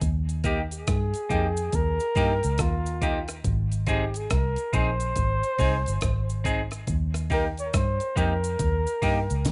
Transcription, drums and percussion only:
0.02 kick medium
0.02 closed hi-hat medium
0.02 cabasa medium
0.29 closed hi-hat medium
0.29 cabasa medium
0.44 kick medium
0.44 closed hi-hat medium
0.44 cabasa soft
0.71 closed hi-hat medium
0.71 cabasa medium
0.87 kick loud
0.87 cross-stick loud
0.87 closed hi-hat medium
0.87 cabasa medium
1.14 closed hi-hat medium
1.14 cabasa medium
1.30 kick medium
1.30 closed hi-hat medium
1.30 cabasa soft
1.57 closed hi-hat soft
1.57 cabasa medium
1.72 kick loud
1.72 closed hi-hat medium
1.72 cabasa medium
2.00 closed hi-hat soft
2.00 cabasa medium
2.15 kick loud
2.15 open hi-hat soft
2.15 cabasa medium
2.43 closed hi-hat soft
2.43 cabasa medium
2.58 kick loud
2.58 cross-stick medium
2.58 closed hi-hat medium
2.58 cabasa medium
2.86 closed hi-hat medium
2.86 cabasa medium
3.02 kick medium
3.02 closed hi-hat medium
3.02 cabasa soft
3.28 cross-stick medium
3.28 closed hi-hat soft
3.28 cabasa medium
3.45 kick loud
3.45 closed hi-hat medium
3.45 cabasa medium
3.72 closed hi-hat soft
3.72 cabasa medium
3.87 kick medium
3.87 closed hi-hat medium
3.87 cabasa soft
4.14 closed hi-hat medium
4.14 cabasa medium
4.30 kick loud
4.30 cross-stick loud
4.30 closed hi-hat medium
4.30 cabasa medium
4.56 closed hi-hat medium
4.56 cabasa medium
4.73 kick medium
4.73 closed hi-hat medium
4.73 cabasa medium
5.00 closed hi-hat medium
5.00 cabasa medium
5.16 kick loud
5.16 closed hi-hat medium
5.16 cabasa medium
5.43 closed hi-hat medium
5.43 cabasa medium
5.58 kick loud
5.58 open hi-hat medium
5.58 cabasa medium
5.86 closed hi-hat soft
5.86 cabasa medium
6.01 kick loud
6.01 cross-stick loud
6.01 closed hi-hat medium
6.01 cabasa medium
6.30 closed hi-hat soft
6.30 cabasa medium
6.45 kick medium
6.45 closed hi-hat medium
6.45 cabasa medium
6.71 cross-stick medium
6.71 closed hi-hat soft
6.71 cabasa medium
6.87 kick loud
6.87 closed hi-hat medium
6.87 cabasa medium
7.14 cross-stick medium
7.14 closed hi-hat medium
7.14 cabasa medium
7.30 kick medium
7.30 open hi-hat soft
7.30 cabasa soft
7.57 closed hi-hat soft
7.57 cabasa medium
7.74 kick loud
7.74 cross-stick loud
7.74 closed hi-hat medium
7.74 cabasa medium
8.00 closed hi-hat medium
8.00 cabasa medium
8.16 kick medium
8.16 closed hi-hat medium
8.16 cabasa soft
8.44 closed hi-hat soft
8.44 cabasa medium
8.59 kick loud
8.59 closed hi-hat medium
8.59 cabasa medium
8.87 closed hi-hat soft
8.87 cabasa medium
9.02 kick medium
9.02 open hi-hat medium
9.02 cabasa medium
9.30 closed hi-hat soft
9.30 cabasa medium
9.45 kick loud
9.45 snare medium
9.45 closed hi-hat medium
9.45 cabasa medium

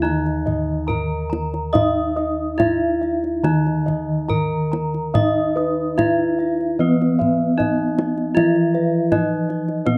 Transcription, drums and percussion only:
0.05 kendang slap soft
0.26 kendang slap soft
0.47 kendang slap soft
0.47 kendang low soft
0.90 kendang slap soft
0.90 kendang low medium
1.33 kendang high soft
1.54 kendang slap soft
1.75 kendang high medium
1.75 kendang low medium
2.17 kendang slap soft
2.60 kendang high medium
2.60 kendang low medium
3.03 kendang slap soft
3.24 kendang slap soft
3.44 kendang slap soft
3.44 kendang high soft
3.67 kendang slap soft
3.88 kendang slap soft
3.88 kendang low medium
4.30 kendang slap soft
4.30 kendang low medium
4.73 kendang high medium
4.94 kendang slap soft
5.15 kendang high medium
5.15 kendang low medium
5.57 kendang slap soft
5.99 kendang high medium
5.99 kendang low medium
6.40 kendang slap soft
6.61 kendang slap soft
6.81 kendang slap soft
7.02 kendang slap soft
7.21 kendang slap soft
7.21 kendang low soft
7.60 kendang slap soft
7.60 kendang low medium
7.99 kendang high medium
8.18 kendang slap soft
8.37 kendang high medium
8.37 kendang low medium
8.56 kendang slap soft
8.75 kendang slap soft
9.12 kendang high medium
9.12 kendang low medium
9.50 kendang slap soft
9.68 kendang slap soft
9.87 kendang slap soft
9.87 kendang high medium

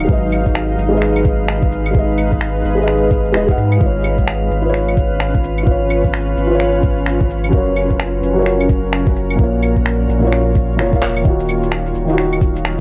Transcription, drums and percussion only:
0.00 claves medium
0.09 kick loud
0.32 claves soft
0.32 shaker medium
0.46 kick medium
0.46 shaker soft
0.55 finger snap loud
0.79 shaker medium
1.02 finger snap medium
1.16 claves soft
1.25 kick loud
1.25 shaker medium
1.48 finger snap loud
1.63 kick loud
1.63 shaker soft
1.72 shaker medium
1.86 claves medium
1.95 kick loud
2.18 claves soft
2.18 shaker medium
2.32 kick medium
2.32 shaker soft
2.41 finger snap loud
2.65 shaker medium
2.88 finger snap medium
3.11 kick loud
3.11 shaker medium
3.25 shaker soft
3.34 finger snap loud
3.49 kick loud
3.49 shaker soft
3.57 shaker medium
3.72 claves soft
3.81 kick loud
4.04 claves soft
4.04 shaker medium
4.18 kick medium
4.18 shaker soft
4.27 finger snap loud
4.51 shaker medium
4.74 finger snap medium
4.88 claves soft
4.97 kick loud
4.97 shaker soft
5.20 finger snap loud
5.35 kick loud
5.35 shaker soft
5.44 shaker medium
5.58 claves soft
5.67 kick loud
5.90 claves medium
5.90 shaker medium
6.04 kick medium
6.04 shaker soft
6.14 finger snap loud
6.37 shaker soft
6.60 finger snap medium
6.83 kick loud
6.83 shaker medium
7.06 finger snap loud
7.21 kick loud
7.21 shaker soft
7.30 shaker medium
7.44 claves medium
7.53 kick loud
7.76 claves medium
7.76 shaker soft
7.91 kick medium
7.91 shaker soft
8.00 finger snap loud
8.23 shaker medium
8.46 finger snap medium
8.60 claves medium
8.69 kick loud
8.69 shaker medium
8.93 finger snap loud
9.07 kick loud
9.07 shaker soft
9.16 shaker medium
9.30 claves medium
9.39 kick loud
9.63 claves medium
9.63 shaker medium
9.77 kick medium
9.77 shaker soft
9.86 finger snap medium
10.09 shaker medium
10.33 finger snap medium
10.55 kick loud
10.55 shaker medium
10.79 finger snap loud
10.93 kick loud
10.93 shaker soft
11.02 clap medium
11.02 shaker medium
11.16 claves medium
11.25 kick loud
11.40 cabasa soft
11.40 shaker soft
11.49 cabasa medium
11.49 claves medium
11.63 shaker medium
11.72 finger snap loud
11.86 shaker soft
11.95 cabasa medium
12.09 shaker medium
12.18 finger snap medium
12.33 claves medium
12.33 shaker soft
12.41 kick loud
12.41 cabasa medium
12.56 shaker medium
12.65 finger snap loud

